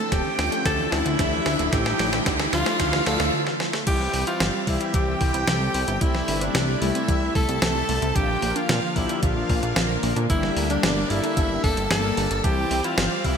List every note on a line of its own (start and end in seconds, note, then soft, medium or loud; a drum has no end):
0.00 3.30 D3 medium
0.00 0.14 F3 medium
0.00 0.11 A3 loud
0.00 0.14 A3 medium
0.00 1.71 A3 medium
0.00 0.14 D4 medium
0.00 0.14 E4 loud
0.00 0.13 A4 loud
0.00 riser medium
0.12 0.23 D1 medium
0.12 0.24 D3 medium
0.12 0.65 G4 loud
0.12 0.62 G5 loud
0.12 kick medium
0.12 snare medium
0.12 closed hi-hat medium
0.25 0.33 E3 medium
0.39 0.50 D2 medium
0.39 0.76 F3 loud
0.39 0.51 F3 medium
0.39 0.76 A3 medium
0.39 0.76 D4 medium
0.39 0.76 F4 loud
0.39 snare medium
0.39 open hi-hat medium
0.52 0.65 A3 loud
0.52 closed hi-hat medium
0.65 0.87 D2 medium
0.65 0.78 D3 medium
0.65 0.93 A4 loud
0.65 0.90 A5 loud
0.65 kick medium
0.65 snare medium
0.65 closed hi-hat medium
0.79 0.86 E3 medium
0.79 1.16 F3 medium
0.79 1.16 A3 medium
0.79 1.16 D4 medium
0.79 1.16 E4 medium
0.92 1.03 D2 medium
0.92 1.04 F3 medium
0.92 1.74 E4 loud
0.92 1.68 E5 medium
0.92 snare medium
0.92 open hi-hat medium
1.06 1.17 D2 loud
1.06 1.18 A3 loud
1.06 closed hi-hat medium
1.19 1.41 D2 medium
1.19 1.31 D3 medium
1.19 1.70 F3 medium
1.19 1.70 A3 medium
1.19 1.70 D4 medium
1.19 1.70 G4 medium
1.19 kick loud
1.19 snare medium
1.19 closed hi-hat loud
1.33 1.40 E3 medium
1.46 1.57 D2 loud
1.46 1.58 F3 medium
1.46 snare medium
1.46 open hi-hat medium
1.59 1.70 D1 medium
1.59 1.72 A3 loud
1.59 closed hi-hat medium
1.72 1.94 A1 medium
1.72 1.85 D3 medium
1.72 2.10 F3 medium
1.72 3.32 G3 medium
1.72 2.10 A3 medium
1.72 2.10 D4 medium
1.72 2.10 E4 loud
1.72 2.26 G4 medium
1.72 2.22 G5 loud
1.72 kick medium
1.72 snare medium
1.72 closed hi-hat medium
1.86 1.93 E3 medium
1.86 snare medium
1.99 2.21 A1 loud
1.99 2.11 F3 medium
1.99 snare loud
1.99 open hi-hat medium
2.13 2.28 F3 medium
2.13 2.28 A3 medium
2.13 2.26 A3 loud
2.13 2.28 D4 medium
2.13 2.28 E4 medium
2.13 snare medium
2.13 closed hi-hat medium
2.26 2.48 D2 medium
2.26 2.38 D3 medium
2.26 kick loud
2.26 snare loud
2.26 closed hi-hat medium
2.40 2.47 E3 medium
2.40 snare medium
2.53 2.64 D2 medium
2.53 2.65 F3 medium
2.53 2.90 F3 loud
2.53 2.90 A3 medium
2.53 2.90 D4 medium
2.53 2.90 F4 loud
2.53 3.03 F4 loud
2.53 3.29 F5 loud
2.53 snare loud
2.53 open hi-hat medium
2.66 2.79 A3 loud
2.66 snare medium
2.66 closed hi-hat medium
2.80 3.01 D2 loud
2.80 2.92 D3 medium
2.80 kick medium
2.80 snare loud
2.80 closed hi-hat medium
2.93 3.30 E3 medium
2.93 3.00 E3 medium
2.93 3.30 F3 medium
2.93 3.30 A3 medium
2.93 3.30 D4 medium
2.93 snare medium
3.07 3.17 D2 loud
3.07 3.19 F3 medium
3.07 3.32 A4 loud
3.07 snare loud
3.07 open hi-hat medium
3.20 3.31 D2 medium
3.20 3.33 A3 loud
3.20 snare medium
3.20 closed hi-hat medium
3.33 3.45 D3 medium
3.47 3.54 E3 medium
3.47 snare medium
3.60 3.72 F3 medium
3.60 snare medium
3.73 3.86 A3 loud
3.73 snare medium
3.87 4.08 C2 loud
3.87 3.99 E3 medium
3.87 4.24 E3 medium
3.87 4.24 G3 medium
3.87 5.99 G3 medium
3.87 4.24 C4 medium
3.87 5.99 C4 medium
3.87 4.24 E4 loud
3.87 4.24 G4 loud
3.87 4.24 G5 loud
3.87 kick loud
3.87 closed hi-hat loud
3.87 crash loud
4.00 4.08 G3 medium
4.14 4.24 C2 medium
4.14 4.26 C4 medium
4.14 open hi-hat medium
4.27 4.43 E3 medium
4.27 4.43 G3 medium
4.27 4.43 C4 medium
4.27 4.43 E4 loud
4.27 4.40 E4 loud
4.27 4.69 F4 loud
4.27 4.65 F5 loud
4.27 closed hi-hat medium
4.40 4.51 G1 medium
4.40 4.53 E3 medium
4.40 snare loud
4.40 closed hi-hat loud
4.54 4.61 G3 medium
4.67 4.78 C2 medium
4.67 5.04 E3 loud
4.67 5.04 G3 medium
4.67 5.04 C4 medium
4.67 4.79 C4 medium
4.67 4.94 E4 loud
4.67 5.04 G4 loud
4.67 4.92 E5 loud
4.67 kick medium
4.67 open hi-hat medium
4.81 4.93 E4 loud
4.81 closed hi-hat medium
4.94 5.16 C2 medium
4.94 5.06 E3 medium
4.94 6.03 G4 loud
4.94 5.97 G5 loud
4.94 kick loud
4.94 closed hi-hat loud
5.07 5.44 E3 medium
5.07 5.44 G3 medium
5.07 5.15 G3 medium
5.07 5.44 C4 medium
5.07 5.44 E4 medium
5.21 5.32 C2 loud
5.21 5.33 C4 medium
5.21 kick loud
5.21 open hi-hat medium
5.34 5.45 C2 loud
5.34 5.47 E4 loud
5.34 closed hi-hat medium
5.48 5.69 C2 medium
5.48 5.98 E3 medium
5.48 5.60 E3 medium
5.48 5.98 G3 medium
5.48 5.98 C4 medium
5.48 5.98 A4 medium
5.48 snare loud
5.48 closed hi-hat medium
5.61 5.68 G3 medium
5.74 5.85 C2 loud
5.74 5.86 C4 medium
5.74 open hi-hat medium
5.88 5.99 G1 medium
5.88 6.01 E4 loud
5.88 closed hi-hat medium
6.01 6.23 C2 medium
6.01 8.13 C3 medium
6.01 6.13 E3 medium
6.01 8.13 G3 medium
6.01 6.38 G3 medium
6.01 8.13 A3 medium
6.01 6.38 A3 medium
6.01 6.38 C4 medium
6.01 8.13 E4 medium
6.01 6.38 E4 loud
6.01 6.43 E4 loud
6.01 6.39 E5 loud
6.01 kick loud
6.01 closed hi-hat loud
6.15 6.22 G3 medium
6.15 snare soft
6.28 6.50 G1 loud
6.28 6.40 A3 medium
6.28 open hi-hat medium
6.41 6.57 G3 medium
6.41 6.57 A3 medium
6.41 6.57 C4 medium
6.41 6.54 C4 loud
6.41 6.83 D4 medium
6.41 6.57 E4 medium
6.41 6.79 D5 medium
6.41 closed hi-hat medium
6.55 6.76 C2 medium
6.55 6.67 E3 medium
6.55 snare loud
6.55 closed hi-hat loud
6.68 6.75 G3 medium
6.82 6.92 C2 medium
6.82 7.19 G3 loud
6.82 7.19 A3 medium
6.82 6.94 A3 medium
6.82 7.19 C4 medium
6.82 7.34 E4 loud
6.82 7.19 G4 loud
6.82 7.32 E5 loud
6.82 open hi-hat medium
6.95 7.08 C4 loud
6.95 closed hi-hat medium
7.08 7.30 C2 loud
7.08 7.20 E3 medium
7.08 kick loud
7.08 closed hi-hat medium
7.22 7.59 G3 medium
7.22 7.29 G3 medium
7.22 7.59 A3 medium
7.22 7.59 C4 medium
7.22 7.59 E4 medium
7.35 7.46 C2 loud
7.35 7.47 A3 medium
7.35 7.60 A4 loud
7.35 7.60 A5 loud
7.35 kick loud
7.35 open hi-hat medium
7.49 7.59 C2 medium
7.49 7.61 C4 loud
7.49 closed hi-hat medium
7.62 7.84 C2 medium
7.62 7.74 E3 medium
7.62 8.12 G3 medium
7.62 8.12 A3 medium
7.62 8.12 C4 medium
7.62 8.12 A4 medium
7.62 8.17 A4 loud
7.62 8.12 A5 loud
7.62 snare loud
7.62 closed hi-hat loud
7.75 7.83 G3 medium
7.89 8.00 C2 medium
7.89 8.01 A3 medium
7.89 open hi-hat medium
8.02 8.13 C2 loud
8.02 8.15 C4 loud
8.02 closed hi-hat medium
8.15 8.37 A#1 loud
8.15 12.40 D3 medium
8.15 8.28 D3 medium
8.15 10.28 F3 medium
8.15 8.53 F3 medium
8.15 12.40 A#3 medium
8.15 8.53 A#3 medium
8.15 8.53 D4 medium
8.15 8.53 F4 loud
8.15 8.57 G4 loud
8.15 8.53 G5 loud
8.15 kick loud
8.15 closed hi-hat medium
8.29 8.36 F3 medium
8.42 8.53 A#1 medium
8.42 8.54 A#3 medium
8.42 open hi-hat medium
8.56 8.71 F3 medium
8.56 8.71 A#3 medium
8.56 8.68 D4 loud
8.56 8.71 D4 medium
8.56 8.97 F4 loud
8.56 8.71 F4 loud
8.56 8.93 F5 loud
8.56 closed hi-hat medium
8.69 8.80 A#2 medium
8.69 8.81 D3 medium
8.69 snare loud
8.69 closed hi-hat loud
8.83 8.90 F3 medium
8.96 9.07 A#1 medium
8.96 9.33 F3 loud
8.96 9.33 A#3 medium
8.96 9.08 A#3 medium
8.96 9.33 D4 medium
8.96 9.22 E4 medium
8.96 9.33 G4 loud
8.96 9.21 E5 medium
8.96 kick medium
8.96 open hi-hat medium
9.09 9.22 D4 loud
9.09 closed hi-hat medium
9.23 9.44 A#1 medium
9.23 9.35 D3 medium
9.23 9.99 F4 medium
9.23 9.99 F5 medium
9.23 kick loud
9.23 closed hi-hat loud
9.36 9.43 F3 medium
9.36 9.73 F3 medium
9.36 9.73 A#3 medium
9.36 9.73 D4 medium
9.36 9.73 F4 medium
9.49 9.60 A#1 loud
9.49 9.61 A#3 medium
9.49 kick loud
9.49 open hi-hat medium
9.63 9.74 A#1 loud
9.63 9.76 D4 loud
9.63 closed hi-hat medium
9.76 9.98 A#1 medium
9.76 9.88 D3 medium
9.76 10.27 F3 medium
9.76 10.27 A#3 medium
9.76 10.27 D4 medium
9.76 10.27 A#4 medium
9.76 snare loud
9.76 closed hi-hat medium
9.90 9.97 F3 medium
10.03 10.14 A#1 loud
10.03 10.15 A#3 medium
10.03 open hi-hat medium
10.16 10.27 A#2 medium
10.16 10.29 D4 loud
10.16 closed hi-hat medium
10.30 10.51 G1 medium
10.30 10.42 D3 medium
10.30 12.42 G3 medium
10.30 10.67 G3 medium
10.30 10.67 A#3 medium
10.30 10.67 D4 medium
10.30 10.67 E4 loud
10.30 10.67 G4 loud
10.30 10.67 E5 loud
10.30 kick loud
10.30 closed hi-hat medium
10.43 10.50 G3 medium
10.43 snare soft
10.57 10.78 D2 medium
10.57 10.69 A#3 medium
10.57 open hi-hat medium
10.70 10.86 G3 medium
10.70 10.86 A#3 medium
10.70 10.83 D4 loud
10.70 10.86 D4 medium
10.70 11.12 D4 loud
10.70 10.86 G4 loud
10.70 11.07 D5 loud
10.70 closed hi-hat medium
10.83 11.05 G1 medium
10.83 10.95 D3 medium
10.83 snare loud
10.83 closed hi-hat medium
10.97 11.04 G3 medium
11.10 11.21 G1 medium
11.10 11.47 G3 loud
11.10 11.22 A#3 medium
11.10 11.47 A#3 medium
11.10 11.47 D4 medium
11.10 11.63 E4 loud
11.10 11.47 A4 loud
11.10 11.60 E5 loud
11.10 open hi-hat medium
11.24 11.36 D4 loud
11.24 closed hi-hat medium
11.37 11.58 G1 loud
11.37 11.49 D3 medium
11.37 kick loud
11.37 closed hi-hat medium
11.50 11.58 G3 medium
11.50 11.87 G3 medium
11.50 11.87 A#3 medium
11.50 11.87 D4 medium
11.50 11.87 G4 medium
11.64 11.75 G1 loud
11.64 11.76 D4 medium
11.64 11.89 A4 loud
11.64 11.89 A5 loud
11.64 kick loud
11.64 open hi-hat medium
11.77 11.88 G1 medium
11.77 11.89 D3 medium
11.77 closed hi-hat medium
11.91 12.12 G1 medium
11.91 12.41 G3 medium
11.91 12.41 A#3 medium
11.91 11.98 D4 medium
11.91 12.41 D4 medium
11.91 12.41 G4 medium
11.91 12.46 A4 loud
11.91 12.40 A5 loud
11.91 snare loud
11.91 closed hi-hat medium
12.04 12.11 A#4 medium
12.17 12.28 G1 loud
12.17 12.25 A#3 medium
12.17 open hi-hat medium
12.31 12.41 G1 medium
12.31 12.43 D4 medium
12.31 closed hi-hat medium
12.44 12.66 C2 loud
12.44 12.81 E3 medium
12.44 12.56 E3 medium
12.44 12.81 G3 medium
12.44 13.37 G3 medium
12.44 12.81 C4 medium
12.44 13.37 C4 medium
12.44 12.81 E4 loud
12.44 12.86 G4 loud
12.44 12.82 G5 loud
12.44 kick loud
12.44 closed hi-hat medium
12.58 12.65 G3 medium
12.71 12.82 C2 medium
12.71 12.83 C4 medium
12.71 open hi-hat medium
12.84 13.00 E3 medium
12.84 13.00 G3 medium
12.84 13.00 C4 medium
12.84 12.97 E4 loud
12.84 13.00 E4 loud
12.84 13.26 F4 loud
12.84 13.22 F5 loud
12.84 closed hi-hat medium
12.98 13.08 G1 medium
12.98 13.10 E3 medium
12.98 snare loud
12.98 closed hi-hat medium
13.11 13.18 G3 medium
13.24 13.35 C2 medium
13.24 13.37 E3 loud
13.24 13.37 G3 medium
13.24 13.37 C4 medium
13.24 13.37 E4 loud
13.24 13.37 G4 loud
13.24 13.37 E5 medium
13.24 kick medium
13.24 open hi-hat medium